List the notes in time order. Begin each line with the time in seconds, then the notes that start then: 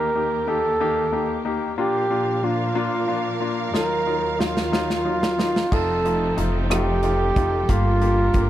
Already playing: D#2 D#3 A#3 G4 A#4
0.15 A#3 D#4 G4
0.47 A#3 D#4 G4 A4
0.80 A#3 D#4 G4
1.12 A#3 D#4 G4
1.45 A#3 D#4 G4
1.78 A#2 F3 A#3 D4 F4 G4 A#4 F5
2.10 A#3 D4 F4
2.43 A#3 D4 F4
2.75 A#3 D4 F4
3.08 A#3 D4 F4
3.40 A#3 D4 F4
3.73 D#2 D#3 F#3 D#4 F4 A#4, snare
4.06 F#3 D#4 F4
4.39 F#3 D#4 F4, snare
4.57 snare
4.72 F#3 D#4 F4, snare
4.90 snare
5.05 F#3 D#4 F4
5.23 snare
5.38 F#3 D#4 F4, snare
5.56 snare
5.71 F1 F3 A3 C4 D#4 F4 G4 A4, kick, crash
6.05 A3 D#4 F4, closed hi-hat
6.37 F1 A3 D#4 F4, closed hi-hat
6.70 A3 D#4 F4 G4, cross-stick, closed hi-hat
7.03 A3 D#4 F4, closed hi-hat
7.36 F1 A3 D#4 F4, kick, closed hi-hat
7.68 G1 G3 A#3 D4 F4 G4 A#4, kick, closed hi-hat
8.01 A#3 F4 G4, closed hi-hat
8.34 G1 A#3 F4 G4, kick, closed hi-hat